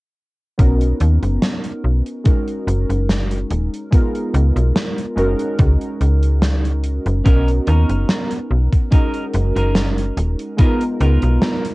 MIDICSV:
0, 0, Header, 1, 6, 480
1, 0, Start_track
1, 0, Key_signature, 6, "major"
1, 0, Tempo, 833333
1, 340, Time_signature, 4, 2, 24, 8
1, 6766, End_track
2, 0, Start_track
2, 0, Title_t, "Clean electric guitar"
2, 0, Program_c, 0, 27
2, 4175, Note_on_c, 0, 61, 112
2, 4178, Note_on_c, 0, 70, 122
2, 4179, Note_on_c, 0, 63, 87
2, 4304, Note_off_c, 0, 61, 0
2, 4305, Note_off_c, 0, 63, 0
2, 4306, Note_off_c, 0, 70, 0
2, 4416, Note_on_c, 0, 61, 81
2, 4420, Note_on_c, 0, 70, 89
2, 4421, Note_on_c, 0, 63, 68
2, 4785, Note_off_c, 0, 61, 0
2, 4786, Note_off_c, 0, 63, 0
2, 4787, Note_off_c, 0, 70, 0
2, 5135, Note_on_c, 0, 63, 82
2, 5140, Note_on_c, 0, 68, 68
2, 5140, Note_on_c, 0, 70, 93
2, 5321, Note_off_c, 0, 63, 0
2, 5322, Note_off_c, 0, 68, 0
2, 5323, Note_off_c, 0, 70, 0
2, 5504, Note_on_c, 0, 63, 85
2, 5507, Note_on_c, 0, 70, 95
2, 5508, Note_on_c, 0, 68, 70
2, 5682, Note_off_c, 0, 63, 0
2, 5683, Note_off_c, 0, 68, 0
2, 5684, Note_off_c, 0, 70, 0
2, 6096, Note_on_c, 0, 59, 108
2, 6100, Note_on_c, 0, 63, 85
2, 6100, Note_on_c, 0, 70, 122
2, 6102, Note_on_c, 0, 65, 88
2, 6225, Note_off_c, 0, 59, 0
2, 6226, Note_off_c, 0, 63, 0
2, 6226, Note_off_c, 0, 65, 0
2, 6227, Note_off_c, 0, 70, 0
2, 6338, Note_on_c, 0, 65, 75
2, 6339, Note_on_c, 0, 63, 65
2, 6340, Note_on_c, 0, 70, 88
2, 6342, Note_on_c, 0, 59, 73
2, 6705, Note_off_c, 0, 59, 0
2, 6705, Note_off_c, 0, 63, 0
2, 6706, Note_off_c, 0, 65, 0
2, 6707, Note_off_c, 0, 70, 0
2, 6766, End_track
3, 0, Start_track
3, 0, Title_t, "Synth keys"
3, 0, Program_c, 1, 88
3, 332, Note_on_c, 1, 59, 71
3, 335, Note_on_c, 1, 61, 66
3, 338, Note_on_c, 1, 63, 64
3, 343, Note_on_c, 1, 66, 63
3, 348, Note_on_c, 1, 70, 79
3, 459, Control_c, 1, 64, 127
3, 1250, Note_off_c, 1, 59, 0
3, 1252, Note_off_c, 1, 61, 0
3, 1254, Note_off_c, 1, 63, 0
3, 1256, Note_off_c, 1, 66, 0
3, 1259, Note_off_c, 1, 70, 0
3, 1291, Note_on_c, 1, 56, 67
3, 1296, Note_on_c, 1, 61, 63
3, 1301, Note_on_c, 1, 63, 63
3, 1305, Note_on_c, 1, 66, 61
3, 1308, Control_c, 1, 64, 0
3, 1309, Note_on_c, 1, 70, 75
3, 1423, Control_c, 1, 64, 127
3, 2210, Note_off_c, 1, 56, 0
3, 2213, Note_off_c, 1, 61, 0
3, 2215, Note_off_c, 1, 63, 0
3, 2217, Note_off_c, 1, 66, 0
3, 2219, Note_off_c, 1, 70, 0
3, 2251, Note_on_c, 1, 56, 74
3, 2257, Note_on_c, 1, 59, 69
3, 2260, Note_on_c, 1, 63, 68
3, 2265, Note_on_c, 1, 65, 69
3, 2267, Control_c, 1, 64, 0
3, 2268, Note_on_c, 1, 70, 81
3, 2375, Control_c, 1, 64, 127
3, 2930, Note_off_c, 1, 56, 0
3, 2933, Note_off_c, 1, 59, 0
3, 2935, Note_off_c, 1, 63, 0
3, 2937, Note_off_c, 1, 65, 0
3, 2939, Note_off_c, 1, 70, 0
3, 2970, Note_on_c, 1, 56, 88
3, 2974, Note_on_c, 1, 61, 81
3, 2979, Note_on_c, 1, 63, 83
3, 2983, Note_on_c, 1, 66, 83
3, 2987, Note_on_c, 1, 70, 100
3, 2988, Control_c, 1, 64, 0
3, 3080, Control_c, 1, 64, 127
3, 4130, Note_off_c, 1, 56, 0
3, 4132, Note_off_c, 1, 61, 0
3, 4134, Note_off_c, 1, 63, 0
3, 4136, Note_off_c, 1, 66, 0
3, 4138, Note_off_c, 1, 70, 0
3, 4170, Note_on_c, 1, 59, 75
3, 4175, Note_on_c, 1, 61, 67
3, 4180, Note_on_c, 1, 63, 67
3, 4184, Note_on_c, 1, 66, 70
3, 4188, Control_c, 1, 64, 0
3, 4188, Note_on_c, 1, 70, 82
3, 4280, Control_c, 1, 64, 127
3, 5090, Note_off_c, 1, 59, 0
3, 5092, Note_off_c, 1, 61, 0
3, 5094, Note_off_c, 1, 63, 0
3, 5097, Note_off_c, 1, 66, 0
3, 5099, Note_off_c, 1, 70, 0
3, 5131, Note_on_c, 1, 56, 73
3, 5136, Note_on_c, 1, 61, 68
3, 5138, Note_on_c, 1, 63, 66
3, 5144, Note_on_c, 1, 66, 64
3, 5147, Note_on_c, 1, 70, 81
3, 5149, Control_c, 1, 64, 0
3, 5241, Control_c, 1, 64, 127
3, 6050, Note_off_c, 1, 56, 0
3, 6053, Note_off_c, 1, 61, 0
3, 6054, Note_off_c, 1, 63, 0
3, 6057, Note_off_c, 1, 66, 0
3, 6058, Note_off_c, 1, 70, 0
3, 6087, Note_on_c, 1, 56, 77
3, 6092, Note_on_c, 1, 59, 69
3, 6097, Note_on_c, 1, 63, 69
3, 6103, Note_on_c, 1, 65, 69
3, 6105, Note_on_c, 1, 70, 84
3, 6106, Control_c, 1, 64, 0
3, 6197, Control_c, 1, 64, 127
3, 6766, Note_off_c, 1, 56, 0
3, 6766, Note_off_c, 1, 59, 0
3, 6766, Note_off_c, 1, 63, 0
3, 6766, Note_off_c, 1, 65, 0
3, 6766, Note_off_c, 1, 70, 0
3, 6766, End_track
4, 0, Start_track
4, 0, Title_t, "FM bass"
4, 0, Program_c, 2, 39
4, 340, Note_on_c, 2, 35, 91
4, 537, Note_off_c, 2, 35, 0
4, 580, Note_on_c, 2, 39, 96
4, 682, Note_off_c, 2, 39, 0
4, 707, Note_on_c, 2, 30, 86
4, 799, Note_off_c, 2, 30, 0
4, 1061, Note_on_c, 2, 35, 77
4, 1163, Note_off_c, 2, 35, 0
4, 1540, Note_on_c, 2, 30, 96
4, 1642, Note_off_c, 2, 30, 0
4, 1668, Note_on_c, 2, 30, 90
4, 1986, Note_off_c, 2, 30, 0
4, 2021, Note_on_c, 2, 27, 88
4, 2123, Note_off_c, 2, 27, 0
4, 2500, Note_on_c, 2, 37, 101
4, 2602, Note_off_c, 2, 37, 0
4, 2626, Note_on_c, 2, 35, 87
4, 2718, Note_off_c, 2, 35, 0
4, 2978, Note_on_c, 2, 30, 83
4, 3081, Note_off_c, 2, 30, 0
4, 3220, Note_on_c, 2, 37, 99
4, 3323, Note_off_c, 2, 37, 0
4, 3460, Note_on_c, 2, 37, 89
4, 4028, Note_off_c, 2, 37, 0
4, 4067, Note_on_c, 2, 30, 93
4, 4159, Note_off_c, 2, 30, 0
4, 4181, Note_on_c, 2, 35, 92
4, 4377, Note_off_c, 2, 35, 0
4, 4421, Note_on_c, 2, 39, 102
4, 4523, Note_off_c, 2, 39, 0
4, 4546, Note_on_c, 2, 30, 86
4, 4638, Note_off_c, 2, 30, 0
4, 4900, Note_on_c, 2, 35, 82
4, 5003, Note_off_c, 2, 35, 0
4, 5381, Note_on_c, 2, 30, 97
4, 5483, Note_off_c, 2, 30, 0
4, 5507, Note_on_c, 2, 30, 93
4, 5825, Note_off_c, 2, 30, 0
4, 5858, Note_on_c, 2, 27, 93
4, 5962, Note_off_c, 2, 27, 0
4, 6340, Note_on_c, 2, 37, 102
4, 6442, Note_off_c, 2, 37, 0
4, 6466, Note_on_c, 2, 35, 88
4, 6558, Note_off_c, 2, 35, 0
4, 6766, End_track
5, 0, Start_track
5, 0, Title_t, "Muted clean electric guitar strokes"
5, 5858, Note_on_c, 9, 29, 31
5, 5915, Note_off_c, 9, 29, 0
5, 6766, End_track
6, 0, Start_track
6, 0, Title_t, "Drums"
6, 340, Note_on_c, 9, 36, 106
6, 340, Note_on_c, 9, 42, 88
6, 398, Note_off_c, 9, 36, 0
6, 398, Note_off_c, 9, 42, 0
6, 466, Note_on_c, 9, 42, 53
6, 523, Note_off_c, 9, 42, 0
6, 577, Note_on_c, 9, 42, 73
6, 635, Note_off_c, 9, 42, 0
6, 707, Note_on_c, 9, 42, 54
6, 764, Note_off_c, 9, 42, 0
6, 819, Note_on_c, 9, 38, 100
6, 819, Note_on_c, 9, 42, 82
6, 877, Note_off_c, 9, 38, 0
6, 877, Note_off_c, 9, 42, 0
6, 944, Note_on_c, 9, 42, 53
6, 1001, Note_off_c, 9, 42, 0
6, 1187, Note_on_c, 9, 42, 53
6, 1245, Note_off_c, 9, 42, 0
6, 1299, Note_on_c, 9, 42, 90
6, 1301, Note_on_c, 9, 36, 106
6, 1356, Note_off_c, 9, 42, 0
6, 1359, Note_off_c, 9, 36, 0
6, 1427, Note_on_c, 9, 42, 54
6, 1485, Note_off_c, 9, 42, 0
6, 1544, Note_on_c, 9, 42, 67
6, 1602, Note_off_c, 9, 42, 0
6, 1671, Note_on_c, 9, 42, 48
6, 1728, Note_off_c, 9, 42, 0
6, 1782, Note_on_c, 9, 38, 97
6, 1785, Note_on_c, 9, 42, 90
6, 1839, Note_off_c, 9, 38, 0
6, 1842, Note_off_c, 9, 42, 0
6, 1907, Note_on_c, 9, 42, 50
6, 1964, Note_off_c, 9, 42, 0
6, 2019, Note_on_c, 9, 42, 76
6, 2076, Note_off_c, 9, 42, 0
6, 2153, Note_on_c, 9, 42, 53
6, 2210, Note_off_c, 9, 42, 0
6, 2261, Note_on_c, 9, 36, 113
6, 2263, Note_on_c, 9, 42, 88
6, 2318, Note_off_c, 9, 36, 0
6, 2320, Note_off_c, 9, 42, 0
6, 2390, Note_on_c, 9, 42, 51
6, 2448, Note_off_c, 9, 42, 0
6, 2502, Note_on_c, 9, 42, 65
6, 2559, Note_off_c, 9, 42, 0
6, 2629, Note_on_c, 9, 42, 51
6, 2687, Note_off_c, 9, 42, 0
6, 2740, Note_on_c, 9, 38, 124
6, 2742, Note_on_c, 9, 42, 85
6, 2798, Note_off_c, 9, 38, 0
6, 2799, Note_off_c, 9, 42, 0
6, 2869, Note_on_c, 9, 42, 56
6, 2927, Note_off_c, 9, 42, 0
6, 2983, Note_on_c, 9, 42, 51
6, 3040, Note_off_c, 9, 42, 0
6, 3106, Note_on_c, 9, 42, 55
6, 3164, Note_off_c, 9, 42, 0
6, 3218, Note_on_c, 9, 42, 91
6, 3221, Note_on_c, 9, 36, 119
6, 3276, Note_off_c, 9, 42, 0
6, 3278, Note_off_c, 9, 36, 0
6, 3347, Note_on_c, 9, 42, 47
6, 3405, Note_off_c, 9, 42, 0
6, 3461, Note_on_c, 9, 42, 79
6, 3518, Note_off_c, 9, 42, 0
6, 3587, Note_on_c, 9, 42, 52
6, 3644, Note_off_c, 9, 42, 0
6, 3697, Note_on_c, 9, 38, 124
6, 3701, Note_on_c, 9, 42, 94
6, 3755, Note_off_c, 9, 38, 0
6, 3759, Note_off_c, 9, 42, 0
6, 3830, Note_on_c, 9, 42, 50
6, 3888, Note_off_c, 9, 42, 0
6, 3938, Note_on_c, 9, 42, 77
6, 3995, Note_off_c, 9, 42, 0
6, 4066, Note_on_c, 9, 42, 53
6, 4124, Note_off_c, 9, 42, 0
6, 4180, Note_on_c, 9, 36, 114
6, 4181, Note_on_c, 9, 42, 98
6, 4238, Note_off_c, 9, 36, 0
6, 4238, Note_off_c, 9, 42, 0
6, 4309, Note_on_c, 9, 42, 56
6, 4367, Note_off_c, 9, 42, 0
6, 4418, Note_on_c, 9, 42, 74
6, 4475, Note_off_c, 9, 42, 0
6, 4547, Note_on_c, 9, 42, 54
6, 4604, Note_off_c, 9, 42, 0
6, 4659, Note_on_c, 9, 38, 118
6, 4660, Note_on_c, 9, 42, 100
6, 4717, Note_off_c, 9, 38, 0
6, 4717, Note_off_c, 9, 42, 0
6, 4785, Note_on_c, 9, 42, 60
6, 4843, Note_off_c, 9, 42, 0
6, 5026, Note_on_c, 9, 36, 57
6, 5027, Note_on_c, 9, 42, 53
6, 5084, Note_off_c, 9, 36, 0
6, 5085, Note_off_c, 9, 42, 0
6, 5137, Note_on_c, 9, 42, 93
6, 5140, Note_on_c, 9, 36, 109
6, 5195, Note_off_c, 9, 42, 0
6, 5198, Note_off_c, 9, 36, 0
6, 5263, Note_on_c, 9, 42, 51
6, 5321, Note_off_c, 9, 42, 0
6, 5377, Note_on_c, 9, 42, 74
6, 5434, Note_off_c, 9, 42, 0
6, 5509, Note_on_c, 9, 42, 53
6, 5566, Note_off_c, 9, 42, 0
6, 5616, Note_on_c, 9, 38, 117
6, 5618, Note_on_c, 9, 42, 103
6, 5673, Note_off_c, 9, 38, 0
6, 5675, Note_off_c, 9, 42, 0
6, 5748, Note_on_c, 9, 42, 57
6, 5805, Note_off_c, 9, 42, 0
6, 5859, Note_on_c, 9, 42, 82
6, 5917, Note_off_c, 9, 42, 0
6, 5985, Note_on_c, 9, 42, 55
6, 6043, Note_off_c, 9, 42, 0
6, 6096, Note_on_c, 9, 42, 101
6, 6100, Note_on_c, 9, 36, 114
6, 6154, Note_off_c, 9, 42, 0
6, 6157, Note_off_c, 9, 36, 0
6, 6225, Note_on_c, 9, 42, 57
6, 6283, Note_off_c, 9, 42, 0
6, 6339, Note_on_c, 9, 42, 69
6, 6397, Note_off_c, 9, 42, 0
6, 6463, Note_on_c, 9, 42, 52
6, 6520, Note_off_c, 9, 42, 0
6, 6577, Note_on_c, 9, 38, 122
6, 6578, Note_on_c, 9, 42, 89
6, 6634, Note_off_c, 9, 38, 0
6, 6635, Note_off_c, 9, 42, 0
6, 6709, Note_on_c, 9, 42, 60
6, 6766, Note_off_c, 9, 42, 0
6, 6766, End_track
0, 0, End_of_file